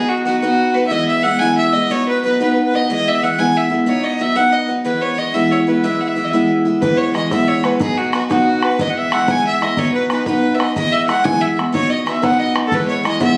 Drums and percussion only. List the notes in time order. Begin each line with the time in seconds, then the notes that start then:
6.82 bodhran
7.15 bodhran
7.31 bodhran
7.48 bodhran
7.64 bodhran
7.80 bodhran
8.13 bodhran
8.31 bodhran
8.47 bodhran
8.63 bodhran
8.79 bodhran
9.12 bodhran
9.28 bodhran
9.45 bodhran
9.62 bodhran
9.77 bodhran
10.10 bodhran
10.26 bodhran
10.43 bodhran
10.60 bodhran
10.76 bodhran
11.09 bodhran
11.25 bodhran
11.42 bodhran
11.59 bodhran
11.75 bodhran
12.07 bodhran
12.23 bodhran
12.39 bodhran
12.56 bodhran
12.72 bodhran
13.05 bodhran
13.21 bodhran